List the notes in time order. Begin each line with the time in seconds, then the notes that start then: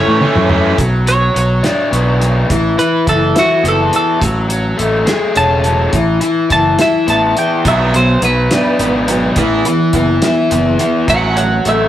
Already playing: E3 A3 C#4 C#5
0.08 A2
0.21 E3 A3 C#4, high tom
0.35 F#2, mid tom
0.49 E3 A3 C#4, mid tom
0.78 B1 F#3, kick, closed hi-hat
1.07 F#3 C#5, closed hi-hat
1.35 B1 F#3, closed hi-hat
1.63 D4, snare, closed hi-hat
1.91 B1 B3, closed hi-hat
2.20 F#3, closed hi-hat
2.49 A1 E3, kick, closed hi-hat
2.78 E3 B4, closed hi-hat
3.07 F#1 E3 A4, kick, closed hi-hat
3.35 E4 F#4, snare, closed hi-hat
3.63 F#1 B3, closed hi-hat
3.69 A4
3.91 E3, closed hi-hat
3.96 A4
4.20 A1 F#3, kick, closed hi-hat
4.49 F#3, closed hi-hat
4.77 A1 A3, closed hi-hat
5.06 G#4, snare, closed hi-hat
5.35 E1 C#4 A5, closed hi-hat
5.64 F#3, closed hi-hat
5.93 A1 E3, kick, closed hi-hat
6.21 E3, closed hi-hat
6.50 F#1 E3 A5, kick, closed hi-hat
6.78 E4 E5, snare, closed hi-hat
7.07 A1 B3 A5, closed hi-hat
7.36 E3 G5, closed hi-hat
7.65 B1 F#3 B3 D4 E5, kick, closed hi-hat
7.94 F#3 B3 C5, closed hi-hat
8.22 B1 F#3 B3 B4, closed hi-hat
8.51 F#3 B3 D4, snare, closed hi-hat
8.79 G#1 F#3 B3, closed hi-hat
9.08 F#3 B3, closed hi-hat
9.36 A1 E3 B3 E4, kick, closed hi-hat
9.65 E3 B3, closed hi-hat
9.93 F#1 E3 B3, kick, closed hi-hat
10.22 E3 B3 E4, snare, closed hi-hat
10.50 F#1 E3 B3, closed hi-hat
10.79 E3 B3, closed hi-hat
11.08 A1 F#3 A3 C#4 F#5, kick, closed hi-hat
11.36 F#3 A3 F#5, closed hi-hat
11.65 A1 F#3 A3 E5, closed hi-hat